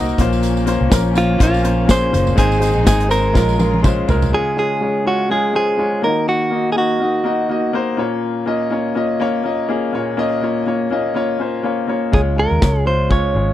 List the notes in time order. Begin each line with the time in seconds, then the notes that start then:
Already playing: C2 A#2 C3 F#3 A#3 D#4 F#4 A#4 C5 D#5
0.09 tambourine
0.18 A#1 A#2 F3 A#3 C#4 F4 C5, kick, closed hi-hat, floor tom, tambourine
0.33 tambourine
0.43 closed hi-hat, tambourine
0.57 tambourine
0.66 A#3 C#4 F4 C5, closed hi-hat, tambourine
0.81 C2
0.90 A#1 A#3 C#4 F4 A#4, kick, snare, closed hi-hat, tambourine
1.14 A#3 C#4 F4 C5, closed hi-hat, tambourine
1.38 A#1 A#3 C#4 F4 C5, kick, closed hi-hat, tambourine
1.43 F4
1.54 tambourine
1.63 A#3 C#4 F4 C5, closed hi-hat, tambourine
1.87 A#3 C#4 F4 G#4, kick, snare, closed hi-hat, tambourine
1.91 C5
2.11 F#1 A#3 C#4 F4 C5, closed hi-hat, floor tom, tambourine
2.27 floor tom, tambourine
2.36 G#1 G#2 D#3 G#3 C4 D#4 G#4 C5, kick, closed hi-hat, tambourine
2.52 tambourine
2.60 G#3 C4 D#4 C5, closed hi-hat, tambourine
2.76 A#1
2.84 G#1 G#3 C4 D#4 G#4 C5, kick, snare, closed hi-hat, tambourine
3.00 closed hi-hat
3.08 G#3 C4 D#4 A#4 C5, closed hi-hat, tambourine
3.33 A#1 A#2 C#3 G#3 A#3 C#4 F4 A#4, kick, snare, tambourine
3.49 tambourine
3.58 G#3 C#4 F4 A#4, high tom, tambourine
3.74 high tom
3.82 G#3 C#4 F4 C5, kick, mid tom, tambourine
4.08 C2 G#3 C#4 F4 A#4, floor tom, tambourine
4.22 floor tom, tambourine
4.32 C#3 G#3 C#4 F4 G#4 C#5
4.57 G#3 C#4 F4 G#4
4.81 G#3 C#4 F4 C#5
5.05 G#3 C#4 F4 F#4 C#5
5.29 G#3 C#4 F4 G#4
5.53 G#3 C#4 F4 G#4 C5
5.78 G#3 C#4 F4 C#5
6.02 D#3 A#3 D#4 F4 A#4 D#5
6.09 F#4
6.29 F#4
6.51 A#3 D#4 F#4 D#5
6.72 A#3 D#4 F#4 G#4
6.77 F#4 D#5
7.00 A#3 D#4 F#4 D#5
7.24 A#3 D#4 F#4 D#5
7.49 A#3 D#4 F#4 D#5
7.73 A#3 D#4 F#4 C5
7.97 A#2 A#3 C#4 F4 C#5
8.46 A#3 C#4 F4 D#5
8.70 A#3 C#4 F4 C#5
8.95 A#3 C#4 F4 D#5
9.20 A#3 C#4 F4 C#5
9.44 A#3 C#4 F4 D#5
9.69 A#3 C#4 F4 G#4
9.93 A#2 A#3 C#4 F4 C#5
10.17 A#3 C#4 F4 D#5
10.41 A#3 C#4 F4 C#5
10.66 A#3 C#4 F4 C#5
10.90 A#3 C#4 F4 D#5
11.14 A#3 C#4 F4 C#5
11.39 A#3 C#4 F4 C5
11.63 A#3 C#4 F4 C#5
11.87 A#3 C#4 F4 C#5
12.12 C#2 C#3 G#3 C#4 F4 G#4 C#5, kick
12.36 G#3 C#4 F4 A#4 C#5
12.51 D#2
12.61 C#2 G#3 C#4 F4 C#5, kick, snare
12.85 G#3 C#4 F4 C5
13.09 G#3 C#4 F4 C#5, kick
13.35 G#1 G#3 C#4 F4 C#5